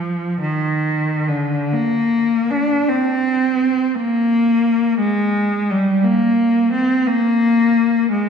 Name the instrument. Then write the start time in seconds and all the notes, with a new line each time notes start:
cello
Already playing: F3
0.41 D#3
1.28 D3
1.73 A#3
2.51 D4
2.89 C4
3.95 A#3
4.99 G#3
5.71 G3
6.04 A#3
6.73 C4
7.07 A#3
8.11 G#3